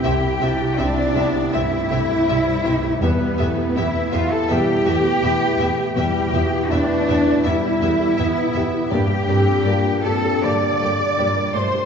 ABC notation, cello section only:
X:1
M:4/4
L:1/16
Q:1/4=81
K:Ephr
V:1 name="Cello section"
G4 D4 E8 | B,4 E2 F A G8 | G4 D4 E8 | G6 A2 d6 c2 |]